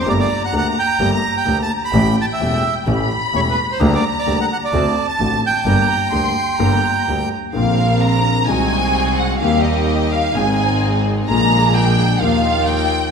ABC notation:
X:1
M:4/4
L:1/16
Q:1/4=128
K:Gm
V:1 name="Violin section"
b16 | g8 =b8 | b8 a8 | b4 c'4 b6 z2 |
[K:Bb] f4 b4 _a6 _g2 | f2 e4 f2 _a6 z2 | b4 g4 f4 g4 |]
V:2 name="Bandoneon"
d d2 ^f f2 g3 b2 g2 a2 =b- | =b2 a =e4 z4 z ^c =B2 =c- | c d2 d2 ^f f d4 a3 g2- | g12- g2 z2 |
[K:Bb] z16 | z16 | z16 |]
V:3 name="String section"
z16 | z16 | z16 | z16 |
[K:Bb] [CDB]8 [C_G_A]8 | [B,EG]8 [CE_A]8 | [B,D_A]8 [B,EF]8 |]
V:4 name="Grand piano" clef=bass
[G,,,G,,D,A,B,G]2 z2 [D,,D,A,B,G]2 z2 [G,,,G,,D,A,B,G]2 z2 [D,,D,A,B,G]2 z2 | [A,,,A,,=E,A,^CG]2 z2 [=E,,,=E,,E,A,CG]2 z2 [A,,,A,,E,A,CG]2 z2 [E,,,E,,E,A,CG]2 z2 | [D,,D,G,B,G]2 z2 [D,,D,G,B,G]2 z2 [D,,D,A,C^F]2 z2 [A,,,A,,D,A,CF]2 z2 | [G,,,G,,D,G,B,G]2 z2 [D,,D,G,B,G]2 z2 [G,,,G,,D,G,B,G]2 z2 [D,,D,G,B,G]2 z2 |
[K:Bb] [B,,,B,,D,B,CF]8 [C,,C,E,_A,C_G]8 | [E,,E,G,B,G]8 [_A,,,_A,,E,_A,C_A]8 | [B,,,B,,D,_A,B,F]8 [E,,E,F,B,F]8 |]
V:5 name="Double bass" clef=bass
G,,,2 z2 D,,2 z2 G,,,2 z2 D,,2 z2 | A,,,2 z2 =E,,,2 z2 A,,,2 z2 E,,,2 z2 | D,,2 z2 D,,2 z2 D,,2 z2 A,,,2 z2 | G,,,2 z2 D,,2 z2 G,,,2 z2 D,,2 z2 |
[K:Bb] B,,,8 C,,8 | E,,8 _A,,,8 | B,,,8 E,,8 |]